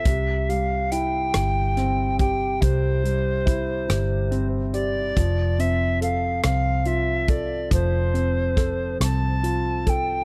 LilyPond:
<<
  \new Staff \with { instrumentName = "Recorder" } { \time 6/8 \key c \major \tempo 4. = 47 e''8 f''8 g''4. g''8 | c''2 r8 d''8~ | d''8 e''8 f''8 f''8 e''8 d''8 | c''4. a''4 g''8 | }
  \new Staff \with { instrumentName = "Upright piano" } { \time 6/8 \key c \major c8 g8 e'8 g8 c'8 g'8 | c8 g8 e'8 g8 c'8 g'8 | f8 c'8 a'8 c'8 f'8 a'8 | f8 c'8 a'8 c'8 f'8 a'8 | }
  \new Staff \with { instrumentName = "Fingered electric bass" } { \clef bass \time 6/8 \key c \major c,4. g,,4. | c,4. g,,4. | f,,4. c,4. | f,,4. c,4. | }
  \new DrumStaff \with { instrumentName = "Drums" } \drummode { \time 6/8 <hh bd>8 hh8 hh8 <hh ss>8 <hh ss>8 <hh bd>8 | <hh bd>8 hh8 <hh bd>8 <hh ss>8 hh8 hh8 | <hh bd>8 hh8 hh8 <hh ss>8 hh8 <hh bd>8 | <hh bd>8 hh8 <hh bd ss>8 <hh ss>8 hh8 <hh bd>8 | }
>>